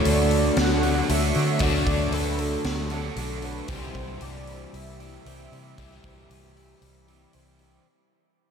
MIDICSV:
0, 0, Header, 1, 7, 480
1, 0, Start_track
1, 0, Tempo, 519931
1, 1491, Time_signature, 4, 2, 24, 8
1, 7856, End_track
2, 0, Start_track
2, 0, Title_t, "Soft synth lead"
2, 0, Program_c, 0, 80
2, 0, Note_on_c, 0, 73, 126
2, 84, Note_on_c, 0, 74, 115
2, 97, Note_off_c, 0, 73, 0
2, 527, Note_off_c, 0, 74, 0
2, 533, Note_on_c, 0, 78, 117
2, 1023, Note_on_c, 0, 76, 100
2, 1037, Note_off_c, 0, 78, 0
2, 1491, Note_on_c, 0, 74, 114
2, 1505, Note_off_c, 0, 76, 0
2, 1970, Note_on_c, 0, 71, 95
2, 1983, Note_off_c, 0, 74, 0
2, 2207, Note_on_c, 0, 69, 99
2, 2221, Note_off_c, 0, 71, 0
2, 3181, Note_on_c, 0, 71, 92
2, 3194, Note_off_c, 0, 69, 0
2, 3402, Note_on_c, 0, 72, 107
2, 3416, Note_off_c, 0, 71, 0
2, 3908, Note_on_c, 0, 74, 109
2, 3921, Note_off_c, 0, 72, 0
2, 4378, Note_off_c, 0, 74, 0
2, 4392, Note_on_c, 0, 76, 110
2, 6743, Note_off_c, 0, 76, 0
2, 7856, End_track
3, 0, Start_track
3, 0, Title_t, "Overdriven electric guitar"
3, 0, Program_c, 1, 29
3, 3426, Note_on_c, 1, 64, 89
3, 5351, Note_off_c, 1, 64, 0
3, 5354, Note_on_c, 1, 64, 92
3, 7247, Note_off_c, 1, 64, 0
3, 7856, End_track
4, 0, Start_track
4, 0, Title_t, "Overdriven electric guitar"
4, 0, Program_c, 2, 29
4, 0, Note_on_c, 2, 50, 92
4, 0, Note_on_c, 2, 57, 97
4, 0, Note_on_c, 2, 62, 100
4, 0, Note_on_c, 2, 66, 98
4, 741, Note_off_c, 2, 66, 0
4, 748, Note_off_c, 2, 50, 0
4, 752, Note_off_c, 2, 57, 0
4, 752, Note_off_c, 2, 62, 0
4, 752, Note_on_c, 2, 66, 68
4, 763, Note_on_c, 2, 62, 68
4, 770, Note_on_c, 2, 57, 66
4, 776, Note_on_c, 2, 50, 59
4, 987, Note_off_c, 2, 66, 0
4, 992, Note_off_c, 2, 62, 0
4, 996, Note_off_c, 2, 57, 0
4, 999, Note_off_c, 2, 50, 0
4, 1011, Note_on_c, 2, 50, 79
4, 1019, Note_on_c, 2, 57, 78
4, 1030, Note_on_c, 2, 62, 89
4, 1030, Note_on_c, 2, 66, 80
4, 1476, Note_off_c, 2, 50, 0
4, 1480, Note_off_c, 2, 57, 0
4, 1486, Note_off_c, 2, 62, 0
4, 1486, Note_off_c, 2, 66, 0
4, 1486, Note_on_c, 2, 50, 85
4, 1498, Note_on_c, 2, 62, 93
4, 1499, Note_on_c, 2, 57, 100
4, 1508, Note_on_c, 2, 66, 101
4, 2673, Note_off_c, 2, 50, 0
4, 2679, Note_off_c, 2, 57, 0
4, 2679, Note_off_c, 2, 62, 0
4, 2679, Note_off_c, 2, 66, 0
4, 2691, Note_on_c, 2, 66, 69
4, 2698, Note_on_c, 2, 62, 67
4, 2708, Note_on_c, 2, 57, 62
4, 2709, Note_on_c, 2, 50, 60
4, 2907, Note_off_c, 2, 50, 0
4, 2916, Note_off_c, 2, 66, 0
4, 2918, Note_off_c, 2, 57, 0
4, 2919, Note_on_c, 2, 50, 87
4, 2920, Note_off_c, 2, 62, 0
4, 2929, Note_on_c, 2, 57, 77
4, 2938, Note_on_c, 2, 62, 95
4, 2942, Note_on_c, 2, 66, 74
4, 3389, Note_off_c, 2, 50, 0
4, 3392, Note_on_c, 2, 48, 88
4, 3395, Note_off_c, 2, 57, 0
4, 3399, Note_off_c, 2, 62, 0
4, 3401, Note_off_c, 2, 66, 0
4, 3402, Note_on_c, 2, 52, 92
4, 3402, Note_on_c, 2, 55, 92
4, 3407, Note_on_c, 2, 60, 104
4, 3409, Note_on_c, 2, 67, 96
4, 4607, Note_off_c, 2, 67, 0
4, 4611, Note_on_c, 2, 67, 78
4, 4615, Note_off_c, 2, 55, 0
4, 4616, Note_off_c, 2, 60, 0
4, 4618, Note_on_c, 2, 55, 68
4, 4619, Note_on_c, 2, 60, 70
4, 4625, Note_off_c, 2, 52, 0
4, 4628, Note_on_c, 2, 52, 73
4, 4630, Note_off_c, 2, 48, 0
4, 4634, Note_on_c, 2, 48, 68
4, 4845, Note_off_c, 2, 48, 0
4, 4849, Note_on_c, 2, 48, 84
4, 4851, Note_off_c, 2, 52, 0
4, 4851, Note_off_c, 2, 55, 0
4, 4855, Note_on_c, 2, 52, 82
4, 4855, Note_on_c, 2, 55, 76
4, 4858, Note_off_c, 2, 60, 0
4, 4859, Note_off_c, 2, 67, 0
4, 4861, Note_on_c, 2, 60, 85
4, 4863, Note_on_c, 2, 67, 96
4, 5319, Note_off_c, 2, 48, 0
4, 5322, Note_on_c, 2, 48, 88
4, 5323, Note_off_c, 2, 52, 0
4, 5327, Note_on_c, 2, 52, 93
4, 5330, Note_off_c, 2, 55, 0
4, 5331, Note_off_c, 2, 60, 0
4, 5334, Note_on_c, 2, 55, 86
4, 5335, Note_on_c, 2, 60, 92
4, 5341, Note_off_c, 2, 67, 0
4, 5344, Note_on_c, 2, 67, 92
4, 6511, Note_off_c, 2, 48, 0
4, 6513, Note_off_c, 2, 52, 0
4, 6517, Note_off_c, 2, 55, 0
4, 6517, Note_off_c, 2, 60, 0
4, 6517, Note_off_c, 2, 67, 0
4, 6528, Note_on_c, 2, 67, 68
4, 6533, Note_on_c, 2, 60, 63
4, 6541, Note_on_c, 2, 55, 66
4, 6544, Note_on_c, 2, 52, 59
4, 6551, Note_on_c, 2, 48, 60
4, 6754, Note_off_c, 2, 67, 0
4, 6755, Note_off_c, 2, 48, 0
4, 6756, Note_off_c, 2, 52, 0
4, 6756, Note_off_c, 2, 60, 0
4, 6760, Note_off_c, 2, 55, 0
4, 6766, Note_on_c, 2, 48, 72
4, 6768, Note_on_c, 2, 52, 80
4, 6779, Note_on_c, 2, 55, 83
4, 6780, Note_on_c, 2, 60, 84
4, 6789, Note_on_c, 2, 67, 78
4, 7233, Note_off_c, 2, 48, 0
4, 7234, Note_off_c, 2, 52, 0
4, 7239, Note_off_c, 2, 55, 0
4, 7240, Note_off_c, 2, 60, 0
4, 7244, Note_off_c, 2, 67, 0
4, 7856, End_track
5, 0, Start_track
5, 0, Title_t, "Twelve-string acoustic guitar"
5, 0, Program_c, 3, 25
5, 0, Note_on_c, 3, 54, 66
5, 0, Note_on_c, 3, 57, 76
5, 0, Note_on_c, 3, 62, 65
5, 57, Note_on_c, 3, 69, 68
5, 517, Note_off_c, 3, 54, 0
5, 528, Note_on_c, 3, 54, 73
5, 999, Note_off_c, 3, 57, 0
5, 1010, Note_on_c, 3, 57, 64
5, 1239, Note_off_c, 3, 54, 0
5, 1250, Note_on_c, 3, 54, 68
5, 1254, Note_off_c, 3, 69, 0
5, 1478, Note_off_c, 3, 54, 0
5, 1489, Note_on_c, 3, 54, 69
5, 1724, Note_off_c, 3, 57, 0
5, 1735, Note_on_c, 3, 57, 75
5, 1967, Note_on_c, 3, 69, 79
5, 2081, Note_off_c, 3, 62, 0
5, 2440, Note_off_c, 3, 54, 0
5, 2451, Note_on_c, 3, 54, 69
5, 2921, Note_off_c, 3, 57, 0
5, 2932, Note_on_c, 3, 57, 65
5, 3157, Note_off_c, 3, 54, 0
5, 3168, Note_off_c, 3, 69, 0
5, 3168, Note_on_c, 3, 54, 64
5, 3401, Note_off_c, 3, 54, 0
5, 3405, Note_on_c, 3, 55, 65
5, 3410, Note_off_c, 3, 57, 0
5, 3644, Note_on_c, 3, 60, 68
5, 3888, Note_on_c, 3, 67, 70
5, 4130, Note_on_c, 3, 64, 71
5, 4367, Note_off_c, 3, 55, 0
5, 4371, Note_on_c, 3, 55, 67
5, 4613, Note_off_c, 3, 64, 0
5, 4616, Note_on_c, 3, 64, 65
5, 4855, Note_off_c, 3, 60, 0
5, 4858, Note_on_c, 3, 60, 66
5, 5085, Note_off_c, 3, 55, 0
5, 5096, Note_on_c, 3, 55, 68
5, 5327, Note_off_c, 3, 55, 0
5, 5338, Note_on_c, 3, 55, 77
5, 5567, Note_off_c, 3, 60, 0
5, 5578, Note_on_c, 3, 60, 65
5, 5809, Note_off_c, 3, 67, 0
5, 5812, Note_off_c, 3, 64, 0
5, 5813, Note_on_c, 3, 67, 66
5, 6059, Note_on_c, 3, 64, 69
5, 6285, Note_off_c, 3, 55, 0
5, 6296, Note_on_c, 3, 55, 63
5, 6525, Note_off_c, 3, 64, 0
5, 6536, Note_on_c, 3, 64, 56
5, 6766, Note_off_c, 3, 60, 0
5, 6777, Note_on_c, 3, 60, 62
5, 7007, Note_off_c, 3, 55, 0
5, 7011, Note_off_c, 3, 67, 0
5, 7018, Note_on_c, 3, 55, 65
5, 7252, Note_off_c, 3, 64, 0
5, 7253, Note_off_c, 3, 55, 0
5, 7253, Note_off_c, 3, 60, 0
5, 7856, End_track
6, 0, Start_track
6, 0, Title_t, "Fingered electric bass"
6, 0, Program_c, 4, 33
6, 49, Note_on_c, 4, 38, 78
6, 449, Note_off_c, 4, 38, 0
6, 524, Note_on_c, 4, 38, 83
6, 926, Note_off_c, 4, 38, 0
6, 1010, Note_on_c, 4, 38, 91
6, 1210, Note_off_c, 4, 38, 0
6, 1253, Note_on_c, 4, 50, 84
6, 1451, Note_off_c, 4, 50, 0
6, 1480, Note_on_c, 4, 38, 92
6, 1684, Note_off_c, 4, 38, 0
6, 1726, Note_on_c, 4, 38, 70
6, 1928, Note_off_c, 4, 38, 0
6, 1946, Note_on_c, 4, 38, 87
6, 2355, Note_off_c, 4, 38, 0
6, 2442, Note_on_c, 4, 38, 91
6, 2844, Note_off_c, 4, 38, 0
6, 2917, Note_on_c, 4, 35, 84
6, 3321, Note_off_c, 4, 35, 0
6, 3404, Note_on_c, 4, 36, 94
6, 3606, Note_off_c, 4, 36, 0
6, 3642, Note_on_c, 4, 36, 78
6, 3844, Note_off_c, 4, 36, 0
6, 3890, Note_on_c, 4, 36, 81
6, 4288, Note_off_c, 4, 36, 0
6, 4370, Note_on_c, 4, 36, 94
6, 4768, Note_off_c, 4, 36, 0
6, 4850, Note_on_c, 4, 36, 88
6, 5049, Note_off_c, 4, 36, 0
6, 5093, Note_on_c, 4, 48, 87
6, 5291, Note_off_c, 4, 48, 0
6, 5333, Note_on_c, 4, 36, 93
6, 5530, Note_off_c, 4, 36, 0
6, 5577, Note_on_c, 4, 36, 76
6, 5773, Note_off_c, 4, 36, 0
6, 5814, Note_on_c, 4, 36, 87
6, 6211, Note_off_c, 4, 36, 0
6, 6291, Note_on_c, 4, 36, 84
6, 6689, Note_off_c, 4, 36, 0
6, 6781, Note_on_c, 4, 36, 89
6, 7175, Note_off_c, 4, 36, 0
6, 7856, End_track
7, 0, Start_track
7, 0, Title_t, "Drums"
7, 48, Note_on_c, 9, 46, 61
7, 140, Note_off_c, 9, 46, 0
7, 286, Note_on_c, 9, 46, 45
7, 379, Note_off_c, 9, 46, 0
7, 523, Note_on_c, 9, 46, 55
7, 529, Note_on_c, 9, 38, 97
7, 615, Note_off_c, 9, 46, 0
7, 622, Note_off_c, 9, 38, 0
7, 766, Note_on_c, 9, 46, 48
7, 858, Note_off_c, 9, 46, 0
7, 1010, Note_on_c, 9, 46, 67
7, 1103, Note_off_c, 9, 46, 0
7, 1243, Note_on_c, 9, 46, 48
7, 1335, Note_off_c, 9, 46, 0
7, 1469, Note_on_c, 9, 46, 75
7, 1481, Note_on_c, 9, 36, 117
7, 1562, Note_off_c, 9, 46, 0
7, 1573, Note_off_c, 9, 36, 0
7, 1723, Note_on_c, 9, 36, 84
7, 1724, Note_on_c, 9, 46, 54
7, 1815, Note_off_c, 9, 36, 0
7, 1816, Note_off_c, 9, 46, 0
7, 1960, Note_on_c, 9, 46, 70
7, 2052, Note_off_c, 9, 46, 0
7, 2203, Note_on_c, 9, 46, 54
7, 2296, Note_off_c, 9, 46, 0
7, 2441, Note_on_c, 9, 46, 62
7, 2447, Note_on_c, 9, 38, 104
7, 2533, Note_off_c, 9, 46, 0
7, 2540, Note_off_c, 9, 38, 0
7, 2677, Note_on_c, 9, 46, 52
7, 2769, Note_off_c, 9, 46, 0
7, 2922, Note_on_c, 9, 46, 68
7, 3014, Note_off_c, 9, 46, 0
7, 3158, Note_on_c, 9, 46, 44
7, 3250, Note_off_c, 9, 46, 0
7, 3398, Note_on_c, 9, 46, 69
7, 3404, Note_on_c, 9, 36, 124
7, 3490, Note_off_c, 9, 46, 0
7, 3496, Note_off_c, 9, 36, 0
7, 3644, Note_on_c, 9, 46, 47
7, 3646, Note_on_c, 9, 36, 88
7, 3736, Note_off_c, 9, 46, 0
7, 3738, Note_off_c, 9, 36, 0
7, 3883, Note_on_c, 9, 46, 66
7, 3976, Note_off_c, 9, 46, 0
7, 4129, Note_on_c, 9, 46, 47
7, 4221, Note_off_c, 9, 46, 0
7, 4375, Note_on_c, 9, 46, 56
7, 4467, Note_off_c, 9, 46, 0
7, 4618, Note_on_c, 9, 46, 46
7, 4711, Note_off_c, 9, 46, 0
7, 4858, Note_on_c, 9, 46, 68
7, 4950, Note_off_c, 9, 46, 0
7, 5104, Note_on_c, 9, 46, 40
7, 5196, Note_off_c, 9, 46, 0
7, 5337, Note_on_c, 9, 46, 68
7, 5338, Note_on_c, 9, 36, 102
7, 5429, Note_off_c, 9, 46, 0
7, 5430, Note_off_c, 9, 36, 0
7, 5575, Note_on_c, 9, 46, 51
7, 5577, Note_on_c, 9, 36, 88
7, 5667, Note_off_c, 9, 46, 0
7, 5669, Note_off_c, 9, 36, 0
7, 5822, Note_on_c, 9, 46, 69
7, 5914, Note_off_c, 9, 46, 0
7, 6063, Note_on_c, 9, 46, 55
7, 6155, Note_off_c, 9, 46, 0
7, 6294, Note_on_c, 9, 46, 59
7, 6387, Note_off_c, 9, 46, 0
7, 6538, Note_on_c, 9, 46, 49
7, 6630, Note_off_c, 9, 46, 0
7, 6768, Note_on_c, 9, 46, 67
7, 6860, Note_off_c, 9, 46, 0
7, 7006, Note_on_c, 9, 46, 46
7, 7099, Note_off_c, 9, 46, 0
7, 7856, End_track
0, 0, End_of_file